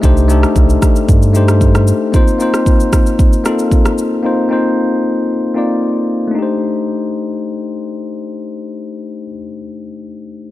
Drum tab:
SH |xxxxxxxxxxxxxxx-|xxxxxxxxxxxxxxx-|----------------|----------------|
SD |---r--r----r-r--|---r--r---r--r--|----------------|----------------|
BD |o---o-o-o---o---|o---o-o-o---o---|----------------|----------------|

SH |----------------|
SD |----------------|
BD |----------------|